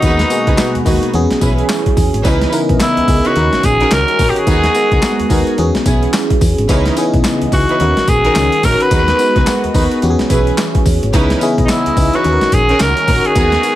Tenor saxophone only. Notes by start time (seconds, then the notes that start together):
Already playing: D#4
2.82 E4
3.26 F#4
3.65 G#4
3.93 A#4
4.29 G4
4.38 G#4
7.53 F#4
8.09 G#4
8.65 A#4
8.82 B4
11.65 D#4
11.71 E4
12.15 F#4
12.54 G#4
12.82 A#4
13.26 G#4